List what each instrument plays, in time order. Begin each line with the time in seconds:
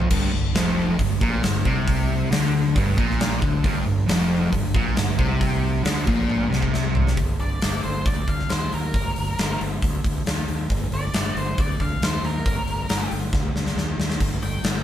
0.00 floor tom
0.10 fingered electric bass G1, distorted electric guitar G2, kick, crash
0.33 fingered electric bass G1, distorted electric guitar G2
0.55 fingered electric bass F1, distorted electric guitar F2, snare, open hi-hat
0.98 fingered electric bass G1, distorted electric guitar G2, kick, open hi-hat
1.21 fingered electric bass A#1, distorted electric guitar A#2, kick
1.43 fingered electric bass G1, distorted electric guitar G2, snare, open hi-hat
1.65 fingered electric bass C2, distorted electric guitar C3, kick
1.88 kick, open hi-hat
2.31 fingered electric bass D2, distorted electric guitar D3, snare, open hi-hat
2.75 fingered electric bass G1, distorted electric guitar G2, kick, open hi-hat
2.98 fingered electric bass A#1, distorted electric guitar A#2, kick
3.10 snare
3.20 snare, open hi-hat
3.41 fingered electric bass D2, distorted electric guitar D3, kick
3.64 fingered electric bass G1, distorted electric guitar G2, kick, open hi-hat
3.86 fingered electric bass G1, distorted electric guitar G2
4.08 fingered electric bass F1, distorted electric guitar F2, snare, open hi-hat
4.52 fingered electric bass G1, distorted electric guitar G2, kick, open hi-hat
4.74 fingered electric bass A#1, distorted electric guitar A#2, kick
4.96 fingered electric bass G1, distorted electric guitar G2, snare, open hi-hat
5.18 fingered electric bass C2, distorted electric guitar C3, kick
5.41 kick, open hi-hat
5.84 fingered electric bass D2, distorted electric guitar D3, snare, open hi-hat
6.06 fingered electric bass A#1, distorted electric guitar A#2, kick
6.30 high tom
6.50 fingered electric bass C2, distorted electric guitar C3, snare
6.62 kick
6.74 snare
6.95 floor tom
7.07 snare
7.17 fingered electric bass G1, kick, open hi-hat
7.39 fingered electric bass G1, lead electric guitar D5, open hi-hat
7.62 fingered electric bass G1, snare, open hi-hat
7.84 fingered electric bass G1, lead electric guitar C5, open hi-hat
8.06 fingered electric bass D2, lead electric guitar D5, kick, open hi-hat
8.27 fingered electric bass D2, lead electric guitar F5, kick, open hi-hat
8.39 snare
8.50 fingered electric bass D#2, lead electric guitar C5, snare, open hi-hat
8.72 fingered electric bass D#2, lead electric guitar A#4, open hi-hat
8.94 fingered electric bass G1, kick, open hi-hat
9.16 fingered electric bass G1, open hi-hat
9.39 fingered electric bass G1, snare, open hi-hat
9.61 fingered electric bass G1, open hi-hat
9.82 fingered electric bass D2, kick, open hi-hat
10.04 fingered electric bass D2, kick, open hi-hat
10.26 fingered electric bass D#2, snare, open hi-hat
10.48 fingered electric bass D#2, open hi-hat
10.70 fingered electric bass G1, kick, open hi-hat
10.91 fingered electric bass G1, lead electric guitar D5, open hi-hat
11.13 fingered electric bass G1, snare, open hi-hat
11.35 fingered electric bass G1, lead electric guitar C5, open hi-hat
11.58 fingered electric bass D2, lead electric guitar D5, kick, open hi-hat
11.80 fingered electric bass D2, lead electric guitar F5, kick, open hi-hat
12.01 fingered electric bass D#2, lead electric guitar C5, snare, open hi-hat
12.22 fingered electric bass D#2, lead electric guitar A#4, open hi-hat
12.46 fingered electric bass G1, kick, open hi-hat
12.66 fingered electric bass G1, open hi-hat
12.89 fingered electric bass G1, snare, open hi-hat
13.11 fingered electric bass G1, open hi-hat
13.33 fingered electric bass D2, kick, snare
13.55 fingered electric bass D2, snare
13.66 snare
13.76 fingered electric bass D#2, snare
13.98 fingered electric bass D#2, snare
14.10 snare
14.20 fingered electric bass G1, kick, open hi-hat, splash
14.43 fingered electric bass G1, lead electric guitar G5, open hi-hat
14.63 fingered electric bass G1, snare, open hi-hat